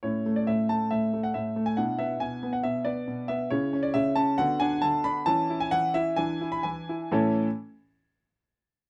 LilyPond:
<<
  \new Staff \with { instrumentName = "Grand piano" } { \time 4/4 \key a \major \tempo 4 = 136 << { cis''8. d''16 e''8 a''8 e''8. fis''16 e''8. gis''16 | fis''8 e''8 gis''8. fis''16 e''8 d''4 e''8 | cis''8. d''16 e''8 a''8 fis''8 gis''8 a''8 b''8 | a''8. gis''16 fis''8 e''8 gis''8. b''16 gis''4 |
<a, e cis' e' a' cis'' a''>8 r2. r8 | } \\ { <cis' e'>1 | <d' e'>1 | <cis' e'>2 <b fis'>2 | <cis' e'>2 <d' e'>2 |
r1 | } >> }
  \new Staff \with { instrumentName = "Grand piano" } { \clef bass \time 4/4 \key a \major a,8 a8 a,8 a8 a,8 a8 a,8 a8 | b,8 b8 b,8 b8 b,8 b8 b,8 b8 | cis8 cis'8 cis8 cis'8 d8 d'8 d8 d'8 | e8 e'8 e8 e'8 e8 e'8 e8 e'8 |
r1 | }
>>